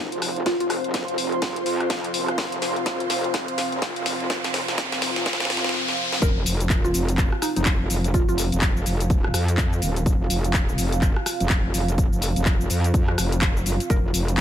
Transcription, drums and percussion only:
0.12 closed hi-hat
0.22 cross-stick, open hi-hat
0.36 closed hi-hat
0.46 kick, snare, closed hi-hat
0.60 closed hi-hat
0.70 cross-stick, open hi-hat
0.84 closed hi-hat
0.94 kick, snare, closed hi-hat
1.08 closed hi-hat
1.18 open hi-hat
1.32 closed hi-hat
1.42 kick, snare, closed hi-hat
1.56 closed hi-hat
1.66 open hi-hat
1.80 cross-stick, closed hi-hat
1.90 kick, snare, closed hi-hat
2.04 closed hi-hat
2.14 open hi-hat
2.28 cross-stick, closed hi-hat
2.38 kick, snare, closed hi-hat
2.52 closed hi-hat
2.62 snare, open hi-hat
2.76 closed hi-hat
2.86 kick, snare, closed hi-hat
3.00 closed hi-hat
3.10 snare, open hi-hat
3.24 closed hi-hat
3.34 kick, snare, closed hi-hat
3.48 closed hi-hat
3.58 snare, open hi-hat
3.72 closed hi-hat
3.82 kick, snare, closed hi-hat
3.96 closed hi-hat
4.06 snare, open hi-hat
4.20 closed hi-hat
4.30 kick, snare, closed hi-hat
4.44 snare, closed hi-hat
4.54 snare, open hi-hat
4.68 snare, closed hi-hat
4.78 kick, snare, closed hi-hat
4.92 snare, closed hi-hat
5.02 snare, open hi-hat
5.16 snare, closed hi-hat
5.26 kick, snare, closed hi-hat
5.33 snare
5.40 snare, closed hi-hat
5.45 snare
5.50 snare, open hi-hat
5.57 snare
5.64 snare, closed hi-hat
5.69 snare
5.74 snare
5.88 snare
6.12 snare
6.22 kick, closed hi-hat, shaker
6.46 open hi-hat, shaker
6.60 closed hi-hat, shaker
6.70 kick, clap, closed hi-hat, shaker
6.85 shaker
6.94 open hi-hat, shaker
7.09 closed hi-hat, shaker
7.18 kick, clap, closed hi-hat, shaker
7.32 cross-stick
7.42 cross-stick, open hi-hat, shaker
7.56 closed hi-hat, shaker
7.65 kick, clap, closed hi-hat, shaker
7.90 open hi-hat, shaker
8.04 closed hi-hat, shaker
8.14 kick, closed hi-hat, shaker
8.29 shaker
8.38 open hi-hat, shaker
8.52 closed hi-hat, shaker
8.61 kick, clap, closed hi-hat, shaker
8.77 shaker
8.86 open hi-hat, shaker
9.00 closed hi-hat, shaker
9.10 kick, closed hi-hat, shaker
9.24 cross-stick
9.34 cross-stick, open hi-hat, shaker
9.48 closed hi-hat, shaker
9.57 kick, clap, closed hi-hat, shaker
9.73 shaker
9.82 open hi-hat, shaker
9.96 closed hi-hat, shaker
10.06 kick, closed hi-hat, shaker
10.30 open hi-hat, shaker
10.44 closed hi-hat, shaker
10.54 kick, clap, closed hi-hat, shaker
10.69 shaker
10.78 open hi-hat, shaker
10.92 closed hi-hat, shaker
11.01 kick, clap, closed hi-hat, shaker
11.16 cross-stick
11.26 cross-stick, open hi-hat, shaker
11.40 closed hi-hat, shaker
11.49 kick, clap, closed hi-hat, shaker
11.74 open hi-hat, shaker
11.88 closed hi-hat, shaker
11.98 kick, closed hi-hat, shaker
12.13 shaker
12.22 open hi-hat, shaker
12.36 closed hi-hat, shaker
12.45 kick, clap, closed hi-hat, shaker
12.61 shaker
12.70 open hi-hat, shaker
12.84 closed hi-hat, shaker
12.94 kick, closed hi-hat, shaker
13.08 cross-stick
13.18 cross-stick, open hi-hat, shaker
13.32 closed hi-hat, shaker
13.41 kick, clap, closed hi-hat, shaker
13.57 shaker
13.66 open hi-hat, shaker
13.80 closed hi-hat, shaker
13.90 kick, closed hi-hat, shaker
14.14 open hi-hat, shaker
14.28 closed hi-hat, shaker
14.37 clap

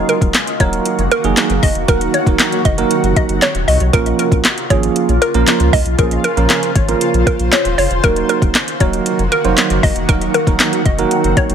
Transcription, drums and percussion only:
0.09 closed hi-hat
0.21 kick, closed hi-hat
0.34 snare, clap, closed hi-hat
0.47 closed hi-hat
0.60 kick, closed hi-hat
0.73 closed hi-hat
0.85 closed hi-hat
0.99 closed hi-hat
1.11 closed hi-hat
1.24 closed hi-hat
1.37 snare, clap, closed hi-hat
1.50 closed hi-hat
1.63 kick, open hi-hat
1.75 closed hi-hat
1.88 kick, closed hi-hat
2.01 closed hi-hat
2.14 closed hi-hat
2.26 kick, closed hi-hat
2.39 snare, clap, closed hi-hat
2.52 closed hi-hat
2.65 kick, closed hi-hat
2.78 closed hi-hat
2.91 closed hi-hat
3.04 closed hi-hat
3.16 kick, closed hi-hat
3.29 closed hi-hat
3.42 snare, clap, closed hi-hat
3.55 closed hi-hat
3.68 open hi-hat
3.80 closed hi-hat
3.93 kick, closed hi-hat
4.06 closed hi-hat
4.19 closed hi-hat
4.32 kick, closed hi-hat
4.45 snare, clap, closed hi-hat
4.58 closed hi-hat
4.70 kick, closed hi-hat
4.83 closed hi-hat
4.96 closed hi-hat
5.09 closed hi-hat
5.22 closed hi-hat
5.34 closed hi-hat
5.47 snare, clap, closed hi-hat
5.60 closed hi-hat
5.73 kick, open hi-hat
5.86 closed hi-hat
5.99 kick, closed hi-hat
6.11 closed hi-hat
6.24 closed hi-hat
6.37 closed hi-hat
6.50 snare, clap, closed hi-hat
6.63 closed hi-hat
6.75 kick, closed hi-hat
6.89 closed hi-hat
7.01 closed hi-hat
7.14 closed hi-hat
7.27 kick, closed hi-hat
7.40 closed hi-hat
7.52 snare, clap, closed hi-hat
7.65 closed hi-hat
7.78 open hi-hat
7.91 closed hi-hat
8.04 kick, closed hi-hat
8.16 closed hi-hat
8.29 closed hi-hat
8.42 kick, closed hi-hat
8.55 snare, clap, closed hi-hat
8.68 closed hi-hat
8.80 kick, closed hi-hat
8.93 closed hi-hat
9.06 closed hi-hat
9.19 closed hi-hat
9.32 closed hi-hat
9.45 closed hi-hat
9.58 snare, clap, closed hi-hat
9.70 closed hi-hat
9.83 kick, open hi-hat
9.96 closed hi-hat
10.09 kick, closed hi-hat
10.21 closed hi-hat
10.34 closed hi-hat
10.47 kick, closed hi-hat
10.60 snare, clap, closed hi-hat
10.73 closed hi-hat
10.86 kick, closed hi-hat
10.99 closed hi-hat
11.11 closed hi-hat
11.24 closed hi-hat
11.37 kick, closed hi-hat
11.50 closed hi-hat

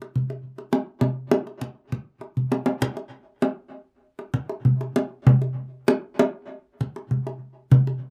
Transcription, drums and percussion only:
0.02 kendang slap
0.16 kendang low
0.30 kendang slap
0.58 kendang slap
0.73 kendang slap, kendang high
1.01 kendang slap, kendang high, kendang low
1.31 kendang slap, kendang high
1.47 kendang slap
1.61 kendang low
1.92 kendang slap, kendang low
2.21 kendang slap
2.37 kendang low
2.52 kendang high
2.66 kendang high
2.82 kendang low
2.97 kendang slap
3.42 kendang high
4.19 kendang slap
4.34 kendang low
4.49 kendang slap
4.65 kendang low
4.81 kendang slap
4.96 kendang high
5.27 kendang low
5.42 kendang slap
5.88 kendang high
6.19 kendang high
6.81 kendang low
6.96 kendang slap
7.11 kendang low
7.27 kendang slap
7.72 kendang low
7.87 kendang slap

